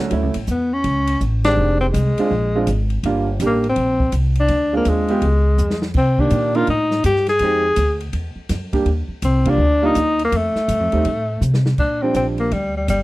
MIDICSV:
0, 0, Header, 1, 6, 480
1, 0, Start_track
1, 0, Key_signature, -2, "major"
1, 0, Tempo, 364964
1, 143, Time_signature, 4, 2, 24, 8
1, 17141, End_track
2, 0, Start_track
2, 0, Title_t, "Grand piano"
2, 0, Program_c, 0, 0
2, 0, Note_on_c, 0, 66, 60
2, 132, Note_off_c, 0, 66, 0
2, 150, Note_on_c, 0, 54, 50
2, 154, Note_on_c, 0, 57, 49
2, 162, Note_on_c, 0, 61, 54
2, 167, Note_on_c, 0, 64, 57
2, 427, Note_off_c, 0, 54, 0
2, 429, Note_off_c, 0, 57, 0
2, 433, Note_off_c, 0, 61, 0
2, 436, Note_off_c, 0, 64, 0
2, 1902, Note_on_c, 0, 56, 57
2, 1902, Note_on_c, 0, 60, 56
2, 1912, Note_on_c, 0, 51, 59
2, 1912, Note_on_c, 0, 67, 61
2, 2518, Note_off_c, 0, 56, 0
2, 2518, Note_off_c, 0, 60, 0
2, 2523, Note_off_c, 0, 51, 0
2, 2523, Note_off_c, 0, 67, 0
2, 2881, Note_on_c, 0, 56, 65
2, 2885, Note_on_c, 0, 60, 61
2, 2886, Note_on_c, 0, 62, 62
2, 2892, Note_on_c, 0, 65, 71
2, 3024, Note_off_c, 0, 56, 0
2, 3026, Note_off_c, 0, 60, 0
2, 3026, Note_off_c, 0, 62, 0
2, 3029, Note_off_c, 0, 65, 0
2, 3358, Note_on_c, 0, 56, 65
2, 3365, Note_on_c, 0, 60, 60
2, 3365, Note_on_c, 0, 65, 72
2, 3368, Note_on_c, 0, 62, 57
2, 3503, Note_off_c, 0, 56, 0
2, 3506, Note_off_c, 0, 60, 0
2, 3506, Note_off_c, 0, 65, 0
2, 3508, Note_off_c, 0, 62, 0
2, 4016, Note_on_c, 0, 55, 63
2, 4018, Note_on_c, 0, 62, 58
2, 4019, Note_on_c, 0, 65, 73
2, 4020, Note_on_c, 0, 58, 57
2, 4283, Note_off_c, 0, 55, 0
2, 4284, Note_off_c, 0, 62, 0
2, 4285, Note_off_c, 0, 58, 0
2, 4285, Note_off_c, 0, 65, 0
2, 4488, Note_on_c, 0, 55, 58
2, 4494, Note_on_c, 0, 58, 52
2, 4499, Note_on_c, 0, 62, 50
2, 4500, Note_on_c, 0, 67, 66
2, 4759, Note_off_c, 0, 55, 0
2, 4762, Note_off_c, 0, 58, 0
2, 4765, Note_off_c, 0, 62, 0
2, 4765, Note_off_c, 0, 67, 0
2, 6223, Note_on_c, 0, 56, 57
2, 6223, Note_on_c, 0, 60, 48
2, 6231, Note_on_c, 0, 62, 56
2, 6232, Note_on_c, 0, 65, 68
2, 6670, Note_off_c, 0, 56, 0
2, 6670, Note_off_c, 0, 60, 0
2, 6674, Note_off_c, 0, 62, 0
2, 6675, Note_off_c, 0, 65, 0
2, 6705, Note_on_c, 0, 56, 73
2, 6708, Note_on_c, 0, 59, 61
2, 6708, Note_on_c, 0, 65, 65
2, 6715, Note_on_c, 0, 67, 81
2, 6855, Note_off_c, 0, 56, 0
2, 6856, Note_off_c, 0, 59, 0
2, 6856, Note_off_c, 0, 65, 0
2, 6860, Note_off_c, 0, 67, 0
2, 8139, Note_on_c, 0, 58, 59
2, 8145, Note_on_c, 0, 62, 49
2, 8149, Note_on_c, 0, 51, 53
2, 8152, Note_on_c, 0, 67, 65
2, 8586, Note_off_c, 0, 58, 0
2, 8589, Note_off_c, 0, 62, 0
2, 8591, Note_off_c, 0, 51, 0
2, 8593, Note_off_c, 0, 67, 0
2, 8616, Note_on_c, 0, 62, 61
2, 8618, Note_on_c, 0, 58, 68
2, 8622, Note_on_c, 0, 63, 67
2, 8628, Note_on_c, 0, 70, 77
2, 8768, Note_off_c, 0, 62, 0
2, 8769, Note_off_c, 0, 58, 0
2, 8771, Note_off_c, 0, 63, 0
2, 8774, Note_off_c, 0, 70, 0
2, 9764, Note_on_c, 0, 56, 66
2, 9767, Note_on_c, 0, 60, 61
2, 9770, Note_on_c, 0, 63, 65
2, 9774, Note_on_c, 0, 67, 68
2, 10033, Note_off_c, 0, 56, 0
2, 10034, Note_off_c, 0, 60, 0
2, 10035, Note_off_c, 0, 63, 0
2, 10038, Note_off_c, 0, 67, 0
2, 11478, Note_on_c, 0, 55, 60
2, 11481, Note_on_c, 0, 58, 55
2, 11490, Note_on_c, 0, 67, 68
2, 11494, Note_on_c, 0, 62, 55
2, 11637, Note_off_c, 0, 55, 0
2, 11638, Note_off_c, 0, 58, 0
2, 11643, Note_off_c, 0, 67, 0
2, 11645, Note_off_c, 0, 62, 0
2, 12445, Note_on_c, 0, 58, 60
2, 12451, Note_on_c, 0, 55, 63
2, 12452, Note_on_c, 0, 62, 55
2, 12457, Note_on_c, 0, 65, 65
2, 12600, Note_off_c, 0, 58, 0
2, 12603, Note_off_c, 0, 55, 0
2, 12603, Note_off_c, 0, 62, 0
2, 12606, Note_off_c, 0, 65, 0
2, 12917, Note_on_c, 0, 55, 79
2, 12924, Note_on_c, 0, 58, 67
2, 12924, Note_on_c, 0, 62, 69
2, 12932, Note_on_c, 0, 65, 87
2, 13075, Note_off_c, 0, 55, 0
2, 13079, Note_off_c, 0, 58, 0
2, 13079, Note_off_c, 0, 62, 0
2, 13083, Note_off_c, 0, 65, 0
2, 14367, Note_on_c, 0, 57, 57
2, 14369, Note_on_c, 0, 55, 61
2, 14370, Note_on_c, 0, 60, 57
2, 14374, Note_on_c, 0, 63, 67
2, 14521, Note_off_c, 0, 57, 0
2, 14522, Note_off_c, 0, 55, 0
2, 14522, Note_off_c, 0, 60, 0
2, 14524, Note_off_c, 0, 63, 0
2, 15814, Note_on_c, 0, 55, 53
2, 15815, Note_on_c, 0, 53, 63
2, 15815, Note_on_c, 0, 60, 48
2, 15822, Note_on_c, 0, 62, 60
2, 16429, Note_off_c, 0, 55, 0
2, 16430, Note_off_c, 0, 53, 0
2, 16430, Note_off_c, 0, 60, 0
2, 16433, Note_off_c, 0, 62, 0
2, 17141, End_track
3, 0, Start_track
3, 0, Title_t, "Tenor saxophone"
3, 0, Program_c, 1, 66
3, 669, Note_on_c, 1, 59, 75
3, 965, Note_on_c, 1, 61, 87
3, 985, Note_off_c, 1, 59, 0
3, 1603, Note_off_c, 1, 61, 0
3, 1897, Note_on_c, 1, 62, 97
3, 2346, Note_off_c, 1, 62, 0
3, 2374, Note_on_c, 1, 60, 75
3, 2452, Note_off_c, 1, 60, 0
3, 2538, Note_on_c, 1, 56, 74
3, 3763, Note_off_c, 1, 56, 0
3, 4551, Note_on_c, 1, 58, 72
3, 4803, Note_off_c, 1, 58, 0
3, 4852, Note_on_c, 1, 60, 81
3, 5423, Note_off_c, 1, 60, 0
3, 5780, Note_on_c, 1, 62, 83
3, 6208, Note_off_c, 1, 62, 0
3, 6270, Note_on_c, 1, 58, 74
3, 6430, Note_on_c, 1, 56, 74
3, 6450, Note_off_c, 1, 58, 0
3, 7678, Note_off_c, 1, 56, 0
3, 7855, Note_on_c, 1, 60, 87
3, 8161, Note_on_c, 1, 62, 85
3, 8181, Note_off_c, 1, 60, 0
3, 8631, Note_on_c, 1, 65, 91
3, 8650, Note_off_c, 1, 62, 0
3, 8792, Note_off_c, 1, 65, 0
3, 8810, Note_on_c, 1, 63, 86
3, 9244, Note_off_c, 1, 63, 0
3, 9277, Note_on_c, 1, 67, 92
3, 9559, Note_off_c, 1, 67, 0
3, 9591, Note_on_c, 1, 68, 102
3, 10488, Note_off_c, 1, 68, 0
3, 12161, Note_on_c, 1, 60, 86
3, 12495, Note_on_c, 1, 62, 110
3, 12515, Note_off_c, 1, 60, 0
3, 12959, Note_on_c, 1, 63, 97
3, 12978, Note_off_c, 1, 62, 0
3, 13424, Note_off_c, 1, 63, 0
3, 13475, Note_on_c, 1, 58, 87
3, 13635, Note_on_c, 1, 57, 76
3, 13654, Note_off_c, 1, 58, 0
3, 15047, Note_off_c, 1, 57, 0
3, 15512, Note_on_c, 1, 62, 71
3, 15812, Note_on_c, 1, 60, 68
3, 15832, Note_off_c, 1, 62, 0
3, 15981, Note_off_c, 1, 60, 0
3, 15997, Note_on_c, 1, 60, 61
3, 16133, Note_off_c, 1, 60, 0
3, 16304, Note_on_c, 1, 58, 71
3, 16475, Note_on_c, 1, 55, 78
3, 16494, Note_off_c, 1, 58, 0
3, 16779, Note_off_c, 1, 55, 0
3, 16795, Note_on_c, 1, 55, 63
3, 16943, Note_off_c, 1, 55, 0
3, 16961, Note_on_c, 1, 55, 71
3, 17097, Note_off_c, 1, 55, 0
3, 17141, End_track
4, 0, Start_track
4, 0, Title_t, "Upright bass"
4, 0, Program_c, 2, 32
4, 148, Note_on_c, 2, 38, 72
4, 296, Note_off_c, 2, 38, 0
4, 296, Note_on_c, 2, 37, 51
4, 456, Note_off_c, 2, 37, 0
4, 464, Note_on_c, 2, 33, 59
4, 613, Note_off_c, 2, 33, 0
4, 626, Note_on_c, 2, 40, 79
4, 1093, Note_off_c, 2, 40, 0
4, 1108, Note_on_c, 2, 37, 81
4, 1574, Note_off_c, 2, 37, 0
4, 1588, Note_on_c, 2, 33, 83
4, 2055, Note_off_c, 2, 33, 0
4, 2064, Note_on_c, 2, 29, 77
4, 2533, Note_off_c, 2, 29, 0
4, 2548, Note_on_c, 2, 36, 90
4, 2838, Note_off_c, 2, 36, 0
4, 3033, Note_on_c, 2, 34, 84
4, 3498, Note_off_c, 2, 34, 0
4, 3513, Note_on_c, 2, 32, 84
4, 3978, Note_off_c, 2, 32, 0
4, 3989, Note_on_c, 2, 31, 80
4, 4456, Note_off_c, 2, 31, 0
4, 4467, Note_on_c, 2, 33, 89
4, 4935, Note_off_c, 2, 33, 0
4, 4949, Note_on_c, 2, 34, 81
4, 5415, Note_off_c, 2, 34, 0
4, 5426, Note_on_c, 2, 36, 86
4, 5894, Note_off_c, 2, 36, 0
4, 5906, Note_on_c, 2, 38, 80
4, 6373, Note_off_c, 2, 38, 0
4, 6387, Note_on_c, 2, 39, 86
4, 6853, Note_off_c, 2, 39, 0
4, 6863, Note_on_c, 2, 37, 78
4, 7331, Note_off_c, 2, 37, 0
4, 7339, Note_on_c, 2, 41, 85
4, 7808, Note_off_c, 2, 41, 0
4, 7819, Note_on_c, 2, 48, 78
4, 8288, Note_off_c, 2, 48, 0
4, 8301, Note_on_c, 2, 46, 89
4, 8768, Note_off_c, 2, 46, 0
4, 8785, Note_on_c, 2, 45, 83
4, 9250, Note_off_c, 2, 45, 0
4, 9261, Note_on_c, 2, 43, 88
4, 9727, Note_off_c, 2, 43, 0
4, 9738, Note_on_c, 2, 41, 81
4, 10205, Note_off_c, 2, 41, 0
4, 10214, Note_on_c, 2, 38, 84
4, 10683, Note_off_c, 2, 38, 0
4, 10693, Note_on_c, 2, 40, 73
4, 10982, Note_off_c, 2, 40, 0
4, 11171, Note_on_c, 2, 42, 83
4, 11637, Note_off_c, 2, 42, 0
4, 11645, Note_on_c, 2, 39, 74
4, 11937, Note_off_c, 2, 39, 0
4, 12131, Note_on_c, 2, 36, 86
4, 12587, Note_off_c, 2, 36, 0
4, 12595, Note_on_c, 2, 38, 88
4, 13072, Note_off_c, 2, 38, 0
4, 13093, Note_on_c, 2, 39, 82
4, 13561, Note_off_c, 2, 39, 0
4, 13574, Note_on_c, 2, 41, 83
4, 13865, Note_off_c, 2, 41, 0
4, 14051, Note_on_c, 2, 43, 86
4, 14205, Note_off_c, 2, 43, 0
4, 14205, Note_on_c, 2, 41, 50
4, 14365, Note_off_c, 2, 41, 0
4, 14373, Note_on_c, 2, 39, 61
4, 14524, Note_off_c, 2, 39, 0
4, 14531, Note_on_c, 2, 45, 72
4, 15000, Note_off_c, 2, 45, 0
4, 15009, Note_on_c, 2, 48, 85
4, 15480, Note_off_c, 2, 48, 0
4, 15501, Note_on_c, 2, 46, 63
4, 15967, Note_off_c, 2, 46, 0
4, 15977, Note_on_c, 2, 34, 81
4, 16446, Note_off_c, 2, 34, 0
4, 16460, Note_on_c, 2, 38, 75
4, 16927, Note_off_c, 2, 38, 0
4, 16943, Note_on_c, 2, 31, 77
4, 17141, Note_off_c, 2, 31, 0
4, 17141, End_track
5, 0, Start_track
5, 0, Title_t, "Muted upright bass strokes"
5, 2854, Note_on_c, 9, 29, 36
5, 2985, Note_off_c, 9, 29, 0
5, 10990, Note_on_c, 9, 29, 33
5, 11121, Note_off_c, 9, 29, 0
5, 11945, Note_on_c, 9, 29, 38
5, 12076, Note_off_c, 9, 29, 0
5, 13881, Note_on_c, 9, 29, 33
5, 14013, Note_off_c, 9, 29, 0
5, 17141, End_track
6, 0, Start_track
6, 0, Title_t, "Drums"
6, 140, Note_on_c, 9, 51, 54
6, 146, Note_on_c, 9, 36, 21
6, 271, Note_off_c, 9, 51, 0
6, 278, Note_off_c, 9, 36, 0
6, 447, Note_on_c, 9, 51, 58
6, 578, Note_off_c, 9, 51, 0
6, 618, Note_on_c, 9, 44, 58
6, 626, Note_on_c, 9, 36, 15
6, 749, Note_off_c, 9, 44, 0
6, 757, Note_off_c, 9, 36, 0
6, 1104, Note_on_c, 9, 51, 48
6, 1107, Note_on_c, 9, 36, 16
6, 1235, Note_off_c, 9, 51, 0
6, 1238, Note_off_c, 9, 36, 0
6, 1412, Note_on_c, 9, 51, 58
6, 1544, Note_off_c, 9, 51, 0
6, 1585, Note_on_c, 9, 44, 46
6, 1588, Note_on_c, 9, 36, 24
6, 1716, Note_off_c, 9, 44, 0
6, 1720, Note_off_c, 9, 36, 0
6, 1899, Note_on_c, 9, 51, 56
6, 1901, Note_on_c, 9, 38, 74
6, 2030, Note_off_c, 9, 51, 0
6, 2033, Note_off_c, 9, 38, 0
6, 2553, Note_on_c, 9, 36, 25
6, 2554, Note_on_c, 9, 44, 55
6, 2554, Note_on_c, 9, 51, 57
6, 2684, Note_off_c, 9, 36, 0
6, 2686, Note_off_c, 9, 44, 0
6, 2686, Note_off_c, 9, 51, 0
6, 2862, Note_on_c, 9, 51, 50
6, 2994, Note_off_c, 9, 51, 0
6, 3035, Note_on_c, 9, 36, 21
6, 3167, Note_off_c, 9, 36, 0
6, 3509, Note_on_c, 9, 44, 49
6, 3509, Note_on_c, 9, 51, 56
6, 3513, Note_on_c, 9, 36, 19
6, 3641, Note_off_c, 9, 44, 0
6, 3641, Note_off_c, 9, 51, 0
6, 3645, Note_off_c, 9, 36, 0
6, 3813, Note_on_c, 9, 51, 36
6, 3945, Note_off_c, 9, 51, 0
6, 3991, Note_on_c, 9, 51, 53
6, 3993, Note_on_c, 9, 36, 19
6, 4123, Note_off_c, 9, 51, 0
6, 4125, Note_off_c, 9, 36, 0
6, 4467, Note_on_c, 9, 44, 54
6, 4467, Note_on_c, 9, 51, 57
6, 4473, Note_on_c, 9, 36, 18
6, 4598, Note_off_c, 9, 44, 0
6, 4598, Note_off_c, 9, 51, 0
6, 4604, Note_off_c, 9, 36, 0
6, 4783, Note_on_c, 9, 51, 34
6, 4914, Note_off_c, 9, 51, 0
6, 4944, Note_on_c, 9, 51, 52
6, 4950, Note_on_c, 9, 36, 17
6, 5075, Note_off_c, 9, 51, 0
6, 5082, Note_off_c, 9, 36, 0
6, 5259, Note_on_c, 9, 36, 64
6, 5390, Note_off_c, 9, 36, 0
6, 5420, Note_on_c, 9, 44, 62
6, 5420, Note_on_c, 9, 51, 65
6, 5428, Note_on_c, 9, 36, 20
6, 5551, Note_off_c, 9, 44, 0
6, 5551, Note_off_c, 9, 51, 0
6, 5559, Note_off_c, 9, 36, 0
6, 5727, Note_on_c, 9, 51, 44
6, 5858, Note_off_c, 9, 51, 0
6, 5896, Note_on_c, 9, 51, 55
6, 5906, Note_on_c, 9, 36, 19
6, 6028, Note_off_c, 9, 51, 0
6, 6037, Note_off_c, 9, 36, 0
6, 6380, Note_on_c, 9, 44, 45
6, 6380, Note_on_c, 9, 51, 55
6, 6386, Note_on_c, 9, 36, 20
6, 6511, Note_off_c, 9, 44, 0
6, 6511, Note_off_c, 9, 51, 0
6, 6518, Note_off_c, 9, 36, 0
6, 6686, Note_on_c, 9, 51, 39
6, 6817, Note_off_c, 9, 51, 0
6, 6862, Note_on_c, 9, 51, 49
6, 6866, Note_on_c, 9, 36, 18
6, 6994, Note_off_c, 9, 51, 0
6, 6997, Note_off_c, 9, 36, 0
6, 7340, Note_on_c, 9, 44, 55
6, 7471, Note_off_c, 9, 44, 0
6, 7501, Note_on_c, 9, 38, 55
6, 7632, Note_off_c, 9, 38, 0
6, 7654, Note_on_c, 9, 38, 68
6, 7785, Note_off_c, 9, 38, 0
6, 7810, Note_on_c, 9, 49, 64
6, 7821, Note_on_c, 9, 36, 71
6, 7941, Note_off_c, 9, 49, 0
6, 7953, Note_off_c, 9, 36, 0
6, 8132, Note_on_c, 9, 36, 60
6, 8264, Note_off_c, 9, 36, 0
6, 8290, Note_on_c, 9, 44, 53
6, 8290, Note_on_c, 9, 51, 58
6, 8422, Note_off_c, 9, 44, 0
6, 8422, Note_off_c, 9, 51, 0
6, 8610, Note_on_c, 9, 51, 35
6, 8741, Note_off_c, 9, 51, 0
6, 8773, Note_on_c, 9, 51, 51
6, 8782, Note_on_c, 9, 36, 20
6, 8905, Note_off_c, 9, 51, 0
6, 8914, Note_off_c, 9, 36, 0
6, 9088, Note_on_c, 9, 38, 39
6, 9220, Note_off_c, 9, 38, 0
6, 9257, Note_on_c, 9, 44, 56
6, 9257, Note_on_c, 9, 51, 69
6, 9261, Note_on_c, 9, 36, 20
6, 9388, Note_off_c, 9, 44, 0
6, 9388, Note_off_c, 9, 51, 0
6, 9393, Note_off_c, 9, 36, 0
6, 9415, Note_on_c, 9, 38, 28
6, 9547, Note_off_c, 9, 38, 0
6, 9555, Note_on_c, 9, 51, 43
6, 9571, Note_on_c, 9, 38, 39
6, 9686, Note_off_c, 9, 51, 0
6, 9703, Note_off_c, 9, 38, 0
6, 9721, Note_on_c, 9, 51, 52
6, 9735, Note_on_c, 9, 36, 22
6, 9853, Note_off_c, 9, 51, 0
6, 9866, Note_off_c, 9, 36, 0
6, 10208, Note_on_c, 9, 44, 52
6, 10208, Note_on_c, 9, 51, 64
6, 10216, Note_on_c, 9, 36, 23
6, 10339, Note_off_c, 9, 44, 0
6, 10339, Note_off_c, 9, 51, 0
6, 10347, Note_off_c, 9, 36, 0
6, 10528, Note_on_c, 9, 51, 38
6, 10659, Note_off_c, 9, 51, 0
6, 10692, Note_on_c, 9, 51, 52
6, 10694, Note_on_c, 9, 36, 18
6, 10824, Note_off_c, 9, 51, 0
6, 10825, Note_off_c, 9, 36, 0
6, 11168, Note_on_c, 9, 44, 63
6, 11168, Note_on_c, 9, 51, 62
6, 11171, Note_on_c, 9, 38, 37
6, 11172, Note_on_c, 9, 36, 23
6, 11300, Note_off_c, 9, 44, 0
6, 11300, Note_off_c, 9, 51, 0
6, 11303, Note_off_c, 9, 38, 0
6, 11304, Note_off_c, 9, 36, 0
6, 11481, Note_on_c, 9, 36, 48
6, 11481, Note_on_c, 9, 51, 45
6, 11612, Note_off_c, 9, 51, 0
6, 11613, Note_off_c, 9, 36, 0
6, 11649, Note_on_c, 9, 36, 22
6, 11649, Note_on_c, 9, 51, 50
6, 11781, Note_off_c, 9, 36, 0
6, 11781, Note_off_c, 9, 51, 0
6, 12127, Note_on_c, 9, 44, 55
6, 12127, Note_on_c, 9, 51, 61
6, 12132, Note_on_c, 9, 36, 19
6, 12259, Note_off_c, 9, 44, 0
6, 12259, Note_off_c, 9, 51, 0
6, 12264, Note_off_c, 9, 36, 0
6, 12434, Note_on_c, 9, 51, 59
6, 12440, Note_on_c, 9, 36, 65
6, 12566, Note_off_c, 9, 51, 0
6, 12572, Note_off_c, 9, 36, 0
6, 13087, Note_on_c, 9, 44, 55
6, 13087, Note_on_c, 9, 51, 56
6, 13094, Note_on_c, 9, 36, 22
6, 13219, Note_off_c, 9, 44, 0
6, 13219, Note_off_c, 9, 51, 0
6, 13226, Note_off_c, 9, 36, 0
6, 13405, Note_on_c, 9, 51, 44
6, 13536, Note_off_c, 9, 51, 0
6, 13575, Note_on_c, 9, 36, 20
6, 13576, Note_on_c, 9, 51, 62
6, 13707, Note_off_c, 9, 36, 0
6, 13708, Note_off_c, 9, 51, 0
6, 13882, Note_on_c, 9, 38, 37
6, 14014, Note_off_c, 9, 38, 0
6, 14053, Note_on_c, 9, 44, 48
6, 14053, Note_on_c, 9, 51, 59
6, 14055, Note_on_c, 9, 36, 17
6, 14185, Note_off_c, 9, 44, 0
6, 14185, Note_off_c, 9, 51, 0
6, 14186, Note_off_c, 9, 36, 0
6, 14362, Note_on_c, 9, 51, 38
6, 14493, Note_off_c, 9, 51, 0
6, 14530, Note_on_c, 9, 51, 53
6, 14536, Note_on_c, 9, 36, 17
6, 14661, Note_off_c, 9, 51, 0
6, 14668, Note_off_c, 9, 36, 0
6, 15015, Note_on_c, 9, 44, 60
6, 15147, Note_off_c, 9, 44, 0
6, 15173, Note_on_c, 9, 38, 53
6, 15305, Note_off_c, 9, 38, 0
6, 15332, Note_on_c, 9, 38, 68
6, 15464, Note_off_c, 9, 38, 0
6, 15492, Note_on_c, 9, 49, 53
6, 15496, Note_on_c, 9, 36, 59
6, 15624, Note_off_c, 9, 49, 0
6, 15628, Note_off_c, 9, 36, 0
6, 15972, Note_on_c, 9, 44, 52
6, 15972, Note_on_c, 9, 51, 55
6, 15976, Note_on_c, 9, 36, 21
6, 16104, Note_off_c, 9, 44, 0
6, 16104, Note_off_c, 9, 51, 0
6, 16108, Note_off_c, 9, 36, 0
6, 16280, Note_on_c, 9, 51, 34
6, 16411, Note_off_c, 9, 51, 0
6, 16459, Note_on_c, 9, 51, 47
6, 16461, Note_on_c, 9, 36, 16
6, 16591, Note_off_c, 9, 51, 0
6, 16592, Note_off_c, 9, 36, 0
6, 16942, Note_on_c, 9, 44, 55
6, 16942, Note_on_c, 9, 51, 56
6, 16945, Note_on_c, 9, 36, 22
6, 17074, Note_off_c, 9, 44, 0
6, 17074, Note_off_c, 9, 51, 0
6, 17076, Note_off_c, 9, 36, 0
6, 17141, End_track
0, 0, End_of_file